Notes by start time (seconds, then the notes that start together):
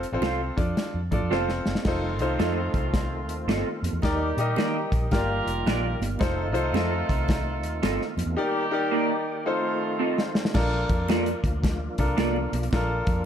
0.03 closed hi-hat
0.12 A1 C4 F4 A4 C5
0.21 C2 F4 A4 C5 F5, snare, closed hi-hat, high conga
0.57 F2 D4 F4 A4 D5, kick, closed hi-hat, low conga
0.77 snare, closed hi-hat, muted conga
0.94 F2
1.11 A2 D4 F4 A4 D5, kick, closed hi-hat, low conga
1.22 F2
1.31 F1 C4 F4 A4 C5 F5 A5, snare, high conga
1.49 snare
1.66 F#1, snare, high conga
1.75 snare
1.85 F1 D#3 F3 A3 C4 D#4 F4 A4 C5, kick, snare, crash, muted conga
2.19 C2 D#4 F4 A4 C5, closed hi-hat, muted conga
2.39 F2 C4 F4 A4 D#5, snare, closed hi-hat, high conga
2.74 C2, kick, closed hi-hat
2.94 kick, snare, closed hi-hat, muted conga
3.28 D#2, closed hi-hat
3.47 G1 C4 F4 A4 D#5, snare, closed hi-hat, high conga
3.82 F2, closed hi-hat, high conga
3.93 E2
4.02 D#2 D#3 G3 A#3 D#4 G4 A#4 D5, kick, snare, closed hi-hat, muted conga
4.37 A#2 D#4 G4 A#4 D#5, closed hi-hat
4.56 D#3 A#3 D#4 G4 D5, snare, closed hi-hat, high conga
4.92 A#1, kick, closed hi-hat
5.11 G1 A#3 F4 G4 A#4 D5, kick, snare, closed hi-hat, muted conga
5.46 F1, closed hi-hat
5.66 A#1 D4 F4 A#4 D5, snare, closed hi-hat, high conga
6.00 G1, closed hi-hat, high conga
6.19 F1 D#3 A3 C4 D#4 F4 A4 C5, kick, snare, closed hi-hat, muted conga
6.52 C2 D#4 F4 A4 C5, closed hi-hat
6.73 F2 C4 F4 A4 D#5, snare, closed hi-hat, high conga
7.09 C2, kick, closed hi-hat
7.28 kick, snare, closed hi-hat, muted conga
7.63 D#2, closed hi-hat
7.83 G1 C4 F4 A4 D#5, snare, closed hi-hat, high conga
8.01 snare
8.17 F2, closed hi-hat, high conga
8.26 E2
8.37 G3 A#3 D#4 G4 A#4 D5
8.71 D#4 G4 A#4 D5
8.91 A#3 D#4 G4 D5
9.45 F3 A3 C4 D#4 F4 A4 C5
9.99 C4 F4 A4 D#5
10.18 snare
10.35 snare
10.45 snare
10.54 A#1 F3 A#3 D4 F4 A4 A#4, kick, snare, crash, muted conga
10.89 F2, kick, closed hi-hat
11.08 A#3 F4 A4 D5, snare, closed hi-hat, high conga
11.26 closed hi-hat
11.44 D2, kick, closed hi-hat
11.64 kick, snare, closed hi-hat, muted conga
11.98 C2 D4 F4 A4 A#4, kick, closed hi-hat
12.17 C2 A#3 F4 A4 D5, snare, closed hi-hat, high conga
12.36 high conga
12.52 B1, closed hi-hat, high conga
12.63 closed hi-hat
12.71 A#1 D4 F4 A4, kick, snare, closed hi-hat, muted conga
12.75 A#4
13.07 F2, kick, closed hi-hat, muted conga